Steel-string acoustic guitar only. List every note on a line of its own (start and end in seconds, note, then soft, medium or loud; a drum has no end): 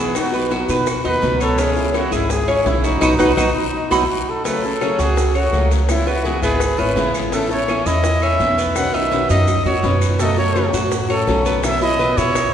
0.00 0.13 B2 medium
0.00 0.15 E3 medium
0.00 0.15 G#3 medium
0.00 0.15 B3 medium
0.00 0.15 E4 medium
0.15 0.32 B2 medium
0.15 0.33 F#3 medium
0.15 0.33 B3 medium
0.15 0.32 D#4 medium
0.15 0.31 F#4 medium
0.32 0.50 B3 soft
0.32 0.50 D#4 soft
0.32 0.50 F#4 soft
0.50 0.68 B2 medium
0.50 0.68 F#3 medium
0.50 0.69 B3 medium
0.50 0.68 D#4 medium
0.50 0.66 F#4 medium
0.68 0.86 B3 soft
0.68 0.86 D#4 soft
0.68 0.86 F#4 soft
0.86 muted steel-string acoustic guitar stroke medium
1.04 1.22 B3 soft
1.04 1.22 D#4 soft
1.04 1.22 F#4 soft
1.22 1.57 B2 medium
1.22 1.58 F#3 medium
1.22 1.58 B3 medium
1.22 1.58 D#4 medium
1.22 1.59 F#4 medium
1.58 1.76 C#3 medium
1.58 1.76 E3 medium
1.58 1.76 G#3 medium
1.58 1.76 C#4 medium
1.58 1.74 E4 medium
1.76 1.94 G#3 soft
1.76 1.94 C#4 soft
1.76 1.93 E4 medium
1.94 2.11 C#3 medium
1.94 2.12 E3 medium
1.94 2.12 G#3 medium
1.94 2.11 C#4 medium
1.94 2.10 E4 medium
2.11 2.29 G#3 soft
2.11 2.29 C#4 soft
2.11 2.29 E4 soft
2.29 muted steel-string acoustic guitar stroke medium
2.47 2.65 G#3 soft
2.47 2.65 C#4 soft
2.47 2.65 E4 soft
2.65 3.01 C#3 medium
2.65 3.00 E3 medium
2.65 3.01 G#3 medium
2.65 3.01 C#4 medium
2.65 3.02 E4 medium
3.01 3.13 F#3 loud
3.01 3.13 B3 medium
3.01 3.13 D#4 medium
3.19 3.31 F#3 medium
3.19 3.31 B3 medium
3.19 3.31 D#4 medium
3.37 3.49 F#3 medium
3.37 3.49 B3 medium
3.37 3.49 D#4 medium
3.91 4.03 F#3 medium
3.91 4.03 B3 medium
3.91 4.03 D#4 medium
4.44 4.62 C#3 medium
4.44 4.63 F#3 medium
4.44 4.63 A3 medium
4.44 4.63 C#4 medium
4.44 4.62 G#4 medium
4.63 4.80 A3 soft
4.63 4.81 C#4 soft
4.63 4.80 G#4 medium
4.80 4.98 C#3 medium
4.80 4.99 F#3 medium
4.80 4.99 A3 medium
4.80 4.98 C#4 medium
4.80 4.97 G#4 medium
4.99 5.16 A3 soft
4.99 5.16 C#4 soft
4.99 5.16 G#4 soft
5.16 muted steel-string acoustic guitar stroke medium
5.34 5.52 A3 soft
5.34 5.52 C#4 soft
5.34 5.52 G#4 soft
5.52 5.87 C#3 medium
5.52 5.88 F#3 medium
5.52 5.89 A3 medium
5.52 5.89 C#4 medium
5.52 5.89 G#4 medium
5.88 6.06 C#3 medium
5.88 6.06 E3 medium
5.88 6.07 G#3 medium
5.88 6.06 B3 medium
5.88 6.05 E4 medium
6.06 6.24 G#3 soft
6.06 6.25 B3 soft
6.06 6.24 E4 soft
6.24 6.42 C#3 medium
6.24 6.42 E3 medium
6.24 6.43 G#3 medium
6.24 6.42 B3 medium
6.24 6.41 E4 medium
6.42 6.60 G#3 soft
6.42 6.60 B3 soft
6.42 6.60 E4 soft
6.61 muted steel-string acoustic guitar stroke medium
6.78 6.96 G#3 soft
6.78 6.96 B3 soft
6.78 6.96 E4 soft
6.96 7.31 C#3 medium
6.96 7.31 E3 medium
6.96 7.32 G#3 medium
6.96 7.31 B3 medium
6.96 7.33 E4 medium
7.32 7.49 E3 medium
7.32 7.50 B3 medium
7.32 7.49 C#4 medium
7.32 7.48 E4 medium
7.49 7.68 B3 soft
7.49 7.68 C#4 soft
7.49 7.67 E4 medium
7.68 7.86 E3 medium
7.68 7.86 B3 medium
7.68 7.86 C#4 medium
7.68 7.85 E4 medium
7.86 8.03 B3 soft
7.86 8.03 C#4 soft
7.86 8.04 E4 soft
8.04 muted steel-string acoustic guitar stroke medium
8.21 8.39 B3 soft
8.21 8.39 C#4 soft
8.21 8.39 E4 soft
8.39 8.75 E3 medium
8.39 8.75 B3 medium
8.39 8.75 C#4 medium
8.39 8.76 E4 medium
8.75 8.93 B2 medium
8.75 8.93 D#3 medium
8.75 8.94 C#4 medium
8.75 8.92 F#4 medium
8.94 9.10 D#3 soft
8.94 9.11 C#4 soft
8.94 9.11 F#4 medium
9.11 9.29 B2 medium
9.11 9.29 D#3 medium
9.11 9.30 C#4 medium
9.11 9.28 F#4 medium
9.30 9.47 D#3 soft
9.30 9.47 C#4 soft
9.30 9.47 F#4 soft
9.48 muted steel-string acoustic guitar stroke medium
9.66 9.82 D#3 soft
9.66 9.83 C#4 soft
9.66 9.83 F#4 soft
9.83 10.19 B2 medium
9.83 10.19 D#3 medium
9.83 10.19 C#4 medium
9.83 10.20 F#4 medium
10.20 10.37 C#3 medium
10.20 10.37 F#3 medium
10.20 10.38 A3 medium
10.20 10.37 C#4 medium
10.20 10.36 F#4 medium
10.37 10.55 A3 soft
10.37 10.56 C#4 soft
10.37 10.55 F#4 medium
10.55 10.73 C#3 medium
10.55 10.73 F#3 medium
10.55 10.73 A3 medium
10.55 10.73 C#4 medium
10.55 10.72 F#4 medium
10.73 10.90 A3 soft
10.73 10.91 C#4 soft
10.73 10.91 F#4 soft
10.91 muted steel-string acoustic guitar stroke medium
11.08 11.26 A3 soft
11.08 11.27 C#4 soft
11.08 11.26 F#4 soft
11.26 11.62 C#3 medium
11.26 11.63 F#3 medium
11.26 11.63 A3 medium
11.26 11.63 C#4 medium
11.26 11.63 F#4 medium
11.62 11.80 B2 medium
11.62 11.81 E3 medium
11.62 11.81 B3 medium
11.62 11.80 E4 medium
11.62 11.80 F#4 medium
11.81 11.99 B3 soft
11.81 11.99 E4 soft
11.81 11.99 F#4 soft
11.99 12.17 B2 medium
11.99 12.17 E3 medium
11.99 12.17 B3 medium
11.99 12.17 E4 medium
11.99 12.15 F#4 medium
12.17 12.34 B3 soft
12.17 12.34 E4 soft
12.17 12.35 F#4 medium
12.35 muted steel-string acoustic guitar stroke medium